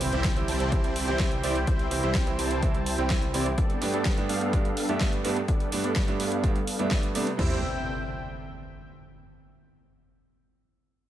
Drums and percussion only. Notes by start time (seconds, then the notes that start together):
0.01 open hi-hat
0.13 closed hi-hat
0.24 kick, snare, closed hi-hat
0.36 closed hi-hat
0.48 open hi-hat
0.60 closed hi-hat
0.72 kick, closed hi-hat
0.84 closed hi-hat
0.96 open hi-hat
1.08 closed hi-hat
1.19 kick, snare, closed hi-hat
1.32 closed hi-hat
1.44 open hi-hat
1.55 closed hi-hat
1.67 kick, closed hi-hat
1.79 closed hi-hat
1.91 open hi-hat
2.03 closed hi-hat
2.15 kick, snare, closed hi-hat
2.27 closed hi-hat
2.39 open hi-hat
2.51 closed hi-hat
2.63 kick, closed hi-hat
2.75 closed hi-hat
2.86 open hi-hat
2.98 closed hi-hat
3.10 kick, snare, closed hi-hat
3.22 closed hi-hat
3.34 open hi-hat
3.46 closed hi-hat
3.58 kick, closed hi-hat
3.70 closed hi-hat
3.82 open hi-hat
3.94 closed hi-hat
4.05 kick, snare, closed hi-hat
4.17 closed hi-hat
4.29 open hi-hat
4.41 closed hi-hat
4.53 kick, closed hi-hat
4.65 closed hi-hat
4.77 open hi-hat
4.89 closed hi-hat
5.00 kick, snare, closed hi-hat
5.13 closed hi-hat
5.25 open hi-hat
5.36 closed hi-hat
5.48 kick, closed hi-hat
5.60 closed hi-hat
5.72 open hi-hat
5.84 closed hi-hat
5.96 kick, snare, closed hi-hat
6.08 closed hi-hat
6.20 open hi-hat
6.32 closed hi-hat
6.44 kick, closed hi-hat
6.56 closed hi-hat
6.67 open hi-hat
6.79 closed hi-hat
6.91 kick, snare, closed hi-hat
7.03 closed hi-hat
7.15 open hi-hat
7.27 closed hi-hat
7.39 kick, floor tom, crash